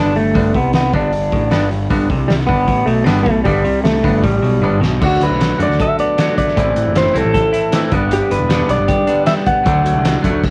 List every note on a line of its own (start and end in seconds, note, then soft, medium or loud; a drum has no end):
0.00 0.32 G1 medium
0.00 0.34 G2 loud
0.00 0.15 D3 medium
0.00 0.14 G3 medium
0.00 0.14 B3 medium
0.00 0.14 D4 medium
0.00 0.16 D4 medium
0.15 0.56 A3 medium
0.15 muted overdriven electric guitar stroke soft
0.15 open hi-hat soft
0.34 0.53 G1 medium
0.34 0.54 G2 medium
0.34 0.54 D3 medium
0.34 0.53 G3 medium
0.34 0.53 B3 medium
0.34 0.53 D4 medium
0.34 kick loud
0.34 open hi-hat medium
0.54 0.91 C2 medium
0.54 0.93 C3 medium
0.54 0.73 B3 medium
0.54 muted overdriven electric guitar stroke medium
0.54 kick medium
0.54 open hi-hat medium
0.73 0.94 B3 medium
0.73 muted overdriven electric guitar stroke soft
0.73 snare loud
0.73 open hi-hat medium
0.93 1.30 G1 medium
0.93 1.32 G2 medium
0.93 1.12 D3 medium
0.93 1.12 G3 medium
0.93 1.12 B3 medium
0.93 1.12 D4 medium
0.93 1.68 D4 medium
0.93 kick medium
0.93 open hi-hat soft
1.13 muted overdriven electric guitar stroke soft
1.13 open hi-hat medium
1.32 1.51 A1 medium
1.32 1.51 A2 medium
1.32 muted overdriven electric guitar stroke soft
1.32 kick medium
1.32 open hi-hat soft
1.51 1.88 G1 medium
1.51 1.89 G2 medium
1.51 1.70 D3 medium
1.51 1.70 G3 medium
1.51 1.70 B3 medium
1.51 1.69 D4 medium
1.51 snare loud
1.51 open hi-hat medium
1.70 muted overdriven electric guitar stroke soft
1.70 open hi-hat soft
1.90 2.08 G1 medium
1.90 2.10 G2 loud
1.90 2.09 D3 medium
1.90 2.10 G3 medium
1.90 2.09 B3 medium
1.90 2.09 D4 medium
1.90 kick loud
1.90 open hi-hat medium
2.10 2.46 C2 medium
2.10 2.49 C3 medium
2.10 muted overdriven electric guitar stroke soft
2.10 kick loud
2.10 open hi-hat soft
2.28 2.33 G3 medium
2.28 muted overdriven electric guitar stroke soft
2.28 snare loud
2.28 open hi-hat medium
2.41 snare soft
2.47 2.67 G1 medium
2.47 2.68 G2 medium
2.47 2.66 D3 medium
2.47 2.66 G3 medium
2.47 2.88 B3 medium
2.47 2.67 B3 medium
2.47 2.67 D4 medium
2.47 kick medium
2.47 open hi-hat soft
2.67 2.85 A1 medium
2.67 2.87 A2 loud
2.67 muted overdriven electric guitar stroke soft
2.67 kick medium
2.67 open hi-hat medium
2.86 3.05 B1 medium
2.86 3.07 B2 medium
2.86 3.04 A3 medium
2.86 muted overdriven electric guitar stroke soft
2.86 open hi-hat soft
3.04 3.25 G1 medium
3.04 3.26 G2 loud
3.04 3.26 D3 medium
3.04 3.25 G3 medium
3.04 3.23 B3 loud
3.04 3.25 B3 medium
3.04 3.25 D4 medium
3.04 snare loud
3.04 open hi-hat medium
3.23 3.45 B1 medium
3.23 3.45 B2 loud
3.23 3.43 A3 medium
3.23 muted overdriven electric guitar stroke soft
3.23 kick loud
3.23 open hi-hat soft
3.44 3.64 G1 medium
3.44 3.65 G2 loud
3.44 3.64 D3 medium
3.44 3.83 G3 medium
3.44 3.64 G3 medium
3.44 3.64 B3 medium
3.44 3.63 D4 medium
3.44 kick loud
3.44 open hi-hat medium
3.64 4.01 C2 medium
3.64 4.03 C3 loud
3.64 muted overdriven electric guitar stroke soft
3.64 open hi-hat medium
3.84 4.25 A3 medium
3.84 muted overdriven electric guitar stroke soft
3.84 snare loud
3.84 open hi-hat medium
4.03 4.22 G1 medium
4.03 4.23 G2 loud
4.03 4.22 D3 medium
4.03 4.22 G3 medium
4.03 4.23 B3 medium
4.03 4.23 D4 medium
4.03 kick medium
4.03 open hi-hat soft
4.23 4.42 A1 medium
4.23 4.42 A2 loud
4.23 4.78 G3 medium
4.23 muted overdriven electric guitar stroke soft
4.23 kick medium
4.23 open hi-hat medium
4.42 4.60 B1 medium
4.42 4.62 B2 loud
4.42 muted overdriven electric guitar stroke soft
4.42 open hi-hat soft
4.61 4.80 G1 medium
4.61 4.81 G2 medium
4.61 4.81 D3 medium
4.61 4.81 G3 medium
4.61 4.80 B3 medium
4.61 4.80 D4 medium
4.61 high tom medium
4.80 4.99 B1 medium
4.80 5.00 B2 loud
4.80 muted overdriven electric guitar stroke soft
4.80 snare medium
5.00 5.16 D2 loud
5.00 5.58 D3 medium
5.00 5.99 D3 medium
5.00 5.61 A3 medium
5.00 5.58 D4 medium
5.00 5.57 F#4 medium
5.00 kick loud
5.00 crash loud
5.06 5.24 F#4 medium
5.21 5.28 D2 medium
5.21 5.39 F#3 medium
5.21 5.58 B4 medium
5.21 closed hi-hat medium
5.30 5.52 B1 medium
5.40 6.17 F#3 medium
5.40 snare loud
5.40 closed hi-hat medium
5.58 5.67 F#2 medium
5.58 6.16 D3 medium
5.58 6.37 A3 medium
5.58 6.17 A3 medium
5.58 6.16 D4 medium
5.58 6.16 F#4 medium
5.58 closed hi-hat medium
5.63 5.81 D5 medium
5.69 5.84 D2 medium
5.69 snare soft
5.80 6.57 A4 medium
5.80 5.99 E5 medium
5.80 kick loud
5.80 closed hi-hat medium
5.99 6.57 B3 medium
5.99 6.35 D5 medium
5.99 closed hi-hat medium
6.17 6.55 D3 medium
6.17 6.57 F#3 medium
6.17 6.56 A3 medium
6.17 6.57 D4 medium
6.17 6.57 F#4 medium
6.17 snare loud
6.17 closed hi-hat medium
6.38 6.57 A3 medium
6.38 6.97 D5 medium
6.38 kick medium
6.38 closed hi-hat medium
6.48 snare soft
6.55 6.71 A1 loud
6.55 7.13 A2 medium
6.55 7.54 A2 medium
6.55 7.13 E3 medium
6.55 7.14 A3 medium
6.55 7.14 C4 medium
6.55 7.12 E4 medium
6.55 kick loud
6.55 closed hi-hat medium
6.76 6.84 A1 medium
6.76 6.94 E3 medium
6.76 closed hi-hat medium
6.87 7.08 F#1 medium
6.95 7.72 E3 medium
6.95 7.17 C5 medium
6.95 snare loud
6.95 closed hi-hat medium
7.13 7.22 C2 medium
7.13 7.71 A2 medium
7.13 7.72 E3 medium
7.13 7.72 A3 medium
7.13 7.72 C4 medium
7.13 7.93 C4 medium
7.13 7.71 E4 medium
7.13 7.94 A4 medium
7.13 closed hi-hat medium
7.25 7.39 A1 loud
7.34 7.92 A4 medium
7.34 kick loud
7.34 closed hi-hat medium
7.53 7.92 E4 medium
7.53 closed hi-hat medium
7.72 7.90 A2 medium
7.72 7.92 E3 medium
7.72 7.91 E3 medium
7.72 7.92 A3 medium
7.72 7.92 C4 medium
7.72 7.93 E4 medium
7.72 snare loud
7.72 closed hi-hat medium
7.91 8.21 G1 medium
7.91 8.48 G2 medium
7.91 8.09 G2 medium
7.91 8.49 D3 medium
7.91 8.50 G3 medium
7.91 8.50 B3 medium
7.91 8.53 D4 medium
7.91 kick medium
7.91 closed hi-hat medium
8.10 9.08 G2 medium
8.10 8.32 G4 loud
8.10 closed hi-hat medium
8.31 8.38 G1 medium
8.31 9.28 D3 medium
8.31 8.71 B4 loud
8.31 closed hi-hat medium
8.40 8.62 E1 medium
8.49 9.07 G2 medium
8.49 9.08 D3 medium
8.49 9.26 G3 medium
8.49 9.08 G3 medium
8.49 9.07 B3 medium
8.49 snare loud
8.49 closed hi-hat medium
8.54 9.06 D4 medium
8.69 8.77 B1 medium
8.69 9.46 B3 medium
8.69 9.24 D5 loud
8.69 closed hi-hat medium
8.78 8.93 G1 medium
8.88 9.66 G4 medium
8.88 kick loud
8.88 closed hi-hat medium
9.07 9.47 D3 medium
9.07 9.46 G3 medium
9.07 9.46 B3 medium
9.07 9.45 D4 medium
9.07 9.66 D4 medium
9.07 closed hi-hat medium
9.11 9.47 G2 medium
9.26 9.66 G3 medium
9.26 9.32 E5 loud
9.26 snare loud
9.26 closed hi-hat medium
9.46 9.67 B3 medium
9.46 10.20 F#5 medium
9.46 kick medium
9.46 closed hi-hat medium
9.64 9.81 D2 loud
9.64 10.22 D3 medium
9.64 10.44 D3 medium
9.64 10.23 F#3 medium
9.64 10.23 A3 medium
9.64 kick loud
9.64 closed hi-hat medium
9.68 10.21 D4 loud
9.84 9.92 D2 medium
9.84 10.05 F#3 medium
9.84 closed hi-hat medium
9.94 10.16 C2 medium
10.05 10.44 F#3 medium
10.05 snare loud
10.05 closed hi-hat medium
10.22 10.31 F#2 medium
10.22 10.44 D3 medium
10.22 10.43 F#3 medium
10.22 10.43 A3 medium
10.22 10.44 A3 medium
10.22 10.42 D4 medium
10.22 kick medium
10.22 closed hi-hat medium
10.32 10.40 D2 medium
10.44 kick loud
10.44 crash medium